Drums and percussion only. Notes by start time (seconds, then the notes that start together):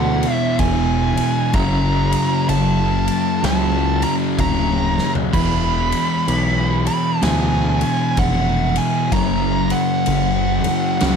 0.23 ride
0.59 kick, ride
1.17 ride
1.53 kick, ride
2.12 ride
2.49 ride
3.08 ride
3.44 snare, ride
4.02 ride
4.39 kick, ride
4.98 snare
5.15 floor tom
5.33 kick, crash
5.92 ride
6.28 ride
6.87 ride
7.23 snare, ride
7.81 ride
8.17 kick, ride
8.76 ride
9.12 kick, ride
9.70 ride
10.06 ride
10.64 ride
11.00 snare, ride